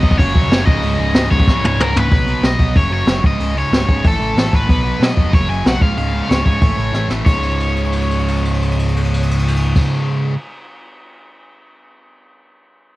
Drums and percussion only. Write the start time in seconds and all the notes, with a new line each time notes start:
0.03 kick
0.11 kick
0.19 kick, open hi-hat
0.35 kick
0.51 snare, open hi-hat
0.67 kick
0.82 open hi-hat
1.14 snare, open hi-hat
1.31 kick
1.40 kick
1.48 kick, snare
1.65 high tom
1.80 mid tom
1.96 floor tom
2.11 kick, open hi-hat
2.27 open hi-hat
2.43 snare, open hi-hat
2.58 kick, open hi-hat
2.76 kick, open hi-hat
2.92 open hi-hat
3.07 snare, open hi-hat
3.24 kick, open hi-hat
3.40 open hi-hat
3.57 open hi-hat
3.72 snare, open hi-hat
3.89 kick, open hi-hat
4.05 kick, open hi-hat
4.21 open hi-hat
4.37 snare, open hi-hat
4.53 kick, open hi-hat
4.69 kick, open hi-hat
4.86 open hi-hat
5.02 snare, open hi-hat
5.17 kick, open hi-hat
5.33 kick, open hi-hat
5.49 open hi-hat
5.65 snare, open hi-hat
5.81 kick, open hi-hat
5.97 open hi-hat
6.14 open hi-hat
6.30 snare, open hi-hat
6.46 kick, open hi-hat
6.62 kick, open hi-hat
6.78 open hi-hat
6.94 snare
7.10 snare
7.26 kick, crash
7.43 crash
7.51 ride
7.60 crash
7.68 ride
7.76 crash
7.84 ride
7.92 crash
8.01 ride
8.11 crash
8.19 ride
8.28 crash
8.36 ride
8.45 crash
8.54 ride
8.62 crash
8.71 ride
8.79 crash
8.88 ride
8.96 crash
9.04 ride
9.14 crash
9.22 ride
9.31 crash
9.39 ride
9.48 crash
9.56 ride
9.76 kick, crash